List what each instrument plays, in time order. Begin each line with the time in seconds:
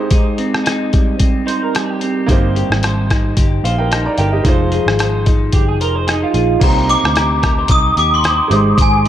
Already playing: upright piano G#3 D#4 G4 C5, clean electric guitar C4 G4
0.11 clean electric guitar G#2 D#4, kick, closed hi-hat
0.38 clean electric guitar C4, closed hi-hat
0.54 cross-stick
0.64 clean electric guitar D#4, cross-stick, closed hi-hat
0.93 clean electric guitar G3, kick, closed hi-hat
1.19 clean electric guitar C4, kick, closed hi-hat
1.46 clean electric guitar D#4 C5, closed hi-hat
1.63 clean electric guitar A#4
1.75 clean electric guitar G3 G#4, cross-stick, closed hi-hat
1.89 clean electric guitar G4
2.01 clean electric guitar C4, closed hi-hat
2.26 picked electric bass G1, clean electric guitar G3 C5, upright piano A#3 D#4 G4, kick, closed hi-hat
2.31 upright piano C5
2.55 clean electric guitar G4, closed hi-hat
2.70 picked electric bass G#1, cross-stick
2.83 clean electric guitar C5, cross-stick, closed hi-hat
3.10 clean electric guitar D#4, kick, cross-stick, closed hi-hat
3.37 picked electric bass G1, clean electric guitar G4, kick, closed hi-hat
3.64 picked electric bass A#1, clean electric guitar C5, upright piano F5, closed hi-hat
3.78 upright piano A#4 G5
3.91 clean electric guitar D#4, cross-stick, closed hi-hat
4.05 upright piano D5 A#5
4.18 picked electric bass G1, clean electric guitar G4, upright piano A#4 G5, closed hi-hat
4.32 upright piano G4 D#5
4.43 picked electric bass F1, clean electric guitar F3 C5, upright piano G#3 D#4 F4, kick, closed hi-hat
4.48 upright piano C5
4.71 clean electric guitar G#4, closed hi-hat
4.86 picked electric bass G#1, cross-stick
4.99 clean electric guitar C5, cross-stick, closed hi-hat
5.25 clean electric guitar D#4, kick, closed hi-hat
5.53 picked electric bass G1, clean electric guitar G4 G#4, kick, closed hi-hat
5.68 clean electric guitar G#4
5.80 picked electric bass F1, clean electric guitar A#4 C5, closed hi-hat
5.95 clean electric guitar C5
6.07 clean electric guitar D#4 G#4, cross-stick, closed hi-hat
6.23 clean electric guitar F4
6.34 picked electric bass A#1, clean electric guitar G#4, closed hi-hat
6.60 picked electric bass C2, clean electric guitar C3, upright piano A#3 D#4 G4, glockenspiel A#5, kick, closed hi-hat, crash
6.64 upright piano C5
6.88 clean electric guitar D#4, glockenspiel D6, closed hi-hat
7.04 picked electric bass D2, cross-stick
7.16 clean electric guitar G4, cross-stick, closed hi-hat
7.42 clean electric guitar A#4, kick, cross-stick, closed hi-hat
7.59 clean electric guitar C5
7.68 picked electric bass C2, clean electric guitar D#4, glockenspiel D#6, kick, closed hi-hat
7.97 picked electric bass D#2, clean electric guitar G4, glockenspiel D6, closed hi-hat
8.14 glockenspiel C6
8.24 clean electric guitar C5, cross-stick, closed hi-hat
8.48 picked electric bass G#1, upright piano G#3 D#4 G4, clean electric guitar G#3, closed hi-hat
8.53 upright piano C5
8.78 picked electric bass G#1, clean electric guitar G#3, glockenspiel G#5, kick, closed hi-hat